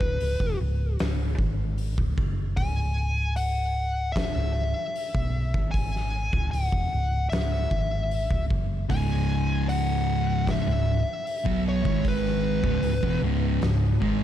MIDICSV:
0, 0, Header, 1, 5, 480
1, 0, Start_track
1, 0, Key_signature, 4, "minor"
1, 0, Tempo, 789474
1, 1570, Time_signature, 4, 2, 24, 8
1, 8655, End_track
2, 0, Start_track
2, 0, Title_t, "Lead electric guitar"
2, 0, Program_c, 0, 29
2, 0, Note_on_c, 0, 71, 81
2, 350, Note_off_c, 0, 71, 0
2, 1562, Note_on_c, 0, 80, 109
2, 2044, Note_off_c, 0, 80, 0
2, 2046, Note_on_c, 0, 78, 94
2, 2506, Note_on_c, 0, 76, 93
2, 2542, Note_off_c, 0, 78, 0
2, 3474, Note_on_c, 0, 80, 105
2, 3507, Note_off_c, 0, 76, 0
2, 3957, Note_off_c, 0, 80, 0
2, 3960, Note_on_c, 0, 78, 83
2, 4419, Note_off_c, 0, 78, 0
2, 4435, Note_on_c, 0, 76, 75
2, 5137, Note_off_c, 0, 76, 0
2, 5414, Note_on_c, 0, 80, 109
2, 5891, Note_off_c, 0, 80, 0
2, 5893, Note_on_c, 0, 78, 97
2, 6384, Note_off_c, 0, 78, 0
2, 6388, Note_on_c, 0, 76, 96
2, 7072, Note_off_c, 0, 76, 0
2, 7105, Note_on_c, 0, 73, 83
2, 7342, Note_off_c, 0, 73, 0
2, 7344, Note_on_c, 0, 71, 81
2, 8031, Note_off_c, 0, 71, 0
2, 8655, End_track
3, 0, Start_track
3, 0, Title_t, "Distorted electric guitar"
3, 0, Program_c, 1, 30
3, 5406, Note_on_c, 1, 37, 86
3, 5408, Note_on_c, 1, 44, 100
3, 5410, Note_on_c, 1, 49, 104
3, 6478, Note_off_c, 1, 37, 0
3, 6480, Note_off_c, 1, 44, 0
3, 6480, Note_off_c, 1, 49, 0
3, 6485, Note_on_c, 1, 37, 66
3, 6489, Note_on_c, 1, 44, 69
3, 6678, Note_off_c, 1, 37, 0
3, 6680, Note_off_c, 1, 44, 0
3, 6957, Note_on_c, 1, 47, 92
3, 6962, Note_on_c, 1, 54, 94
3, 6963, Note_on_c, 1, 59, 100
3, 7198, Note_off_c, 1, 47, 0
3, 7198, Note_on_c, 1, 44, 85
3, 7202, Note_off_c, 1, 54, 0
3, 7202, Note_on_c, 1, 51, 85
3, 7204, Note_off_c, 1, 59, 0
3, 7204, Note_on_c, 1, 56, 86
3, 7674, Note_off_c, 1, 44, 0
3, 7676, Note_on_c, 1, 37, 90
3, 7677, Note_off_c, 1, 51, 0
3, 7678, Note_off_c, 1, 56, 0
3, 7684, Note_on_c, 1, 44, 98
3, 7791, Note_off_c, 1, 37, 0
3, 7796, Note_off_c, 1, 44, 0
3, 7799, Note_on_c, 1, 37, 67
3, 7804, Note_on_c, 1, 44, 68
3, 7918, Note_off_c, 1, 37, 0
3, 7920, Note_off_c, 1, 44, 0
3, 7921, Note_on_c, 1, 40, 80
3, 7923, Note_on_c, 1, 47, 93
3, 8036, Note_off_c, 1, 40, 0
3, 8037, Note_off_c, 1, 47, 0
3, 8040, Note_on_c, 1, 37, 86
3, 8045, Note_on_c, 1, 44, 98
3, 8046, Note_on_c, 1, 49, 97
3, 8269, Note_off_c, 1, 37, 0
3, 8276, Note_off_c, 1, 44, 0
3, 8277, Note_on_c, 1, 37, 66
3, 8278, Note_off_c, 1, 49, 0
3, 8283, Note_on_c, 1, 44, 75
3, 8473, Note_off_c, 1, 37, 0
3, 8477, Note_off_c, 1, 44, 0
3, 8512, Note_on_c, 1, 44, 92
3, 8516, Note_on_c, 1, 51, 88
3, 8517, Note_on_c, 1, 56, 94
3, 8655, Note_off_c, 1, 44, 0
3, 8655, Note_off_c, 1, 51, 0
3, 8655, Note_off_c, 1, 56, 0
3, 8655, End_track
4, 0, Start_track
4, 0, Title_t, "Fingered electric bass"
4, 0, Program_c, 2, 33
4, 4, Note_on_c, 2, 25, 95
4, 119, Note_off_c, 2, 25, 0
4, 128, Note_on_c, 2, 25, 81
4, 241, Note_off_c, 2, 25, 0
4, 244, Note_on_c, 2, 28, 88
4, 358, Note_off_c, 2, 28, 0
4, 368, Note_on_c, 2, 25, 84
4, 592, Note_off_c, 2, 25, 0
4, 608, Note_on_c, 2, 25, 81
4, 832, Note_off_c, 2, 25, 0
4, 839, Note_on_c, 2, 32, 97
4, 1180, Note_off_c, 2, 32, 0
4, 1207, Note_on_c, 2, 25, 89
4, 1320, Note_off_c, 2, 25, 0
4, 1325, Note_on_c, 2, 30, 93
4, 1551, Note_off_c, 2, 30, 0
4, 1566, Note_on_c, 2, 25, 93
4, 2624, Note_off_c, 2, 25, 0
4, 2647, Note_on_c, 2, 25, 79
4, 2872, Note_off_c, 2, 25, 0
4, 3129, Note_on_c, 2, 35, 84
4, 3352, Note_off_c, 2, 35, 0
4, 3369, Note_on_c, 2, 32, 98
4, 3824, Note_off_c, 2, 32, 0
4, 3846, Note_on_c, 2, 25, 93
4, 3959, Note_off_c, 2, 25, 0
4, 3965, Note_on_c, 2, 25, 74
4, 4078, Note_off_c, 2, 25, 0
4, 4091, Note_on_c, 2, 28, 92
4, 4201, Note_off_c, 2, 28, 0
4, 4209, Note_on_c, 2, 25, 80
4, 4432, Note_off_c, 2, 25, 0
4, 4447, Note_on_c, 2, 25, 78
4, 4671, Note_off_c, 2, 25, 0
4, 4688, Note_on_c, 2, 32, 90
4, 5023, Note_off_c, 2, 32, 0
4, 5053, Note_on_c, 2, 25, 88
4, 5162, Note_off_c, 2, 25, 0
4, 5173, Note_on_c, 2, 30, 87
4, 5394, Note_off_c, 2, 30, 0
4, 5410, Note_on_c, 2, 25, 100
4, 6464, Note_off_c, 2, 25, 0
4, 6488, Note_on_c, 2, 25, 82
4, 6710, Note_off_c, 2, 25, 0
4, 6970, Note_on_c, 2, 35, 91
4, 7191, Note_off_c, 2, 35, 0
4, 7205, Note_on_c, 2, 32, 89
4, 7661, Note_off_c, 2, 32, 0
4, 7686, Note_on_c, 2, 25, 92
4, 7790, Note_off_c, 2, 25, 0
4, 7794, Note_on_c, 2, 25, 79
4, 7911, Note_off_c, 2, 25, 0
4, 7919, Note_on_c, 2, 28, 87
4, 8032, Note_off_c, 2, 28, 0
4, 8035, Note_on_c, 2, 25, 80
4, 8263, Note_off_c, 2, 25, 0
4, 8279, Note_on_c, 2, 25, 83
4, 8505, Note_off_c, 2, 25, 0
4, 8522, Note_on_c, 2, 32, 100
4, 8655, Note_off_c, 2, 32, 0
4, 8655, End_track
5, 0, Start_track
5, 0, Title_t, "Drums"
5, 4, Note_on_c, 9, 36, 106
5, 65, Note_off_c, 9, 36, 0
5, 124, Note_on_c, 9, 46, 64
5, 184, Note_off_c, 9, 46, 0
5, 244, Note_on_c, 9, 36, 101
5, 305, Note_off_c, 9, 36, 0
5, 603, Note_on_c, 9, 46, 59
5, 610, Note_on_c, 9, 38, 108
5, 664, Note_off_c, 9, 46, 0
5, 671, Note_off_c, 9, 38, 0
5, 842, Note_on_c, 9, 36, 106
5, 903, Note_off_c, 9, 36, 0
5, 1081, Note_on_c, 9, 46, 60
5, 1141, Note_off_c, 9, 46, 0
5, 1203, Note_on_c, 9, 36, 101
5, 1264, Note_off_c, 9, 36, 0
5, 1323, Note_on_c, 9, 36, 112
5, 1384, Note_off_c, 9, 36, 0
5, 1561, Note_on_c, 9, 46, 57
5, 1564, Note_on_c, 9, 36, 110
5, 1622, Note_off_c, 9, 46, 0
5, 1624, Note_off_c, 9, 36, 0
5, 2043, Note_on_c, 9, 46, 55
5, 2104, Note_off_c, 9, 46, 0
5, 2527, Note_on_c, 9, 46, 56
5, 2528, Note_on_c, 9, 36, 101
5, 2534, Note_on_c, 9, 38, 113
5, 2588, Note_off_c, 9, 46, 0
5, 2589, Note_off_c, 9, 36, 0
5, 2595, Note_off_c, 9, 38, 0
5, 3013, Note_on_c, 9, 46, 58
5, 3074, Note_off_c, 9, 46, 0
5, 3129, Note_on_c, 9, 36, 106
5, 3190, Note_off_c, 9, 36, 0
5, 3370, Note_on_c, 9, 36, 107
5, 3431, Note_off_c, 9, 36, 0
5, 3490, Note_on_c, 9, 36, 114
5, 3494, Note_on_c, 9, 46, 61
5, 3551, Note_off_c, 9, 36, 0
5, 3555, Note_off_c, 9, 46, 0
5, 3624, Note_on_c, 9, 38, 33
5, 3685, Note_off_c, 9, 38, 0
5, 3849, Note_on_c, 9, 36, 105
5, 3909, Note_off_c, 9, 36, 0
5, 3972, Note_on_c, 9, 46, 65
5, 4033, Note_off_c, 9, 46, 0
5, 4088, Note_on_c, 9, 36, 106
5, 4149, Note_off_c, 9, 36, 0
5, 4451, Note_on_c, 9, 46, 61
5, 4458, Note_on_c, 9, 38, 112
5, 4512, Note_off_c, 9, 46, 0
5, 4519, Note_off_c, 9, 38, 0
5, 4688, Note_on_c, 9, 36, 109
5, 4749, Note_off_c, 9, 36, 0
5, 4931, Note_on_c, 9, 46, 57
5, 4992, Note_off_c, 9, 46, 0
5, 5050, Note_on_c, 9, 36, 106
5, 5111, Note_off_c, 9, 36, 0
5, 5171, Note_on_c, 9, 36, 108
5, 5232, Note_off_c, 9, 36, 0
5, 5410, Note_on_c, 9, 36, 117
5, 5415, Note_on_c, 9, 46, 60
5, 5471, Note_off_c, 9, 36, 0
5, 5476, Note_off_c, 9, 46, 0
5, 5892, Note_on_c, 9, 46, 59
5, 5952, Note_off_c, 9, 46, 0
5, 6368, Note_on_c, 9, 36, 98
5, 6368, Note_on_c, 9, 46, 56
5, 6375, Note_on_c, 9, 38, 102
5, 6429, Note_off_c, 9, 36, 0
5, 6429, Note_off_c, 9, 46, 0
5, 6436, Note_off_c, 9, 38, 0
5, 6851, Note_on_c, 9, 46, 58
5, 6912, Note_off_c, 9, 46, 0
5, 6968, Note_on_c, 9, 36, 103
5, 7028, Note_off_c, 9, 36, 0
5, 7206, Note_on_c, 9, 36, 117
5, 7267, Note_off_c, 9, 36, 0
5, 7325, Note_on_c, 9, 36, 103
5, 7326, Note_on_c, 9, 46, 60
5, 7386, Note_off_c, 9, 36, 0
5, 7387, Note_off_c, 9, 46, 0
5, 7451, Note_on_c, 9, 38, 33
5, 7512, Note_off_c, 9, 38, 0
5, 7683, Note_on_c, 9, 36, 104
5, 7744, Note_off_c, 9, 36, 0
5, 7798, Note_on_c, 9, 46, 63
5, 7858, Note_off_c, 9, 46, 0
5, 7922, Note_on_c, 9, 36, 101
5, 7982, Note_off_c, 9, 36, 0
5, 8279, Note_on_c, 9, 46, 56
5, 8286, Note_on_c, 9, 38, 106
5, 8340, Note_off_c, 9, 46, 0
5, 8347, Note_off_c, 9, 38, 0
5, 8523, Note_on_c, 9, 36, 105
5, 8584, Note_off_c, 9, 36, 0
5, 8655, End_track
0, 0, End_of_file